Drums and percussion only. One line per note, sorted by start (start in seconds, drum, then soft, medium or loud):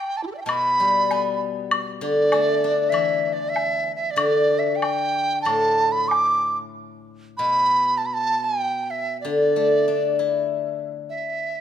0.49 high woodblock soft
1.11 low woodblock soft
1.71 high woodblock medium
2.32 high woodblock soft
2.32 low woodblock soft
2.94 high woodblock soft
3.56 low woodblock soft
4.18 high woodblock medium
4.82 high woodblock soft
4.82 low woodblock soft
5.46 high woodblock soft
6.11 low woodblock soft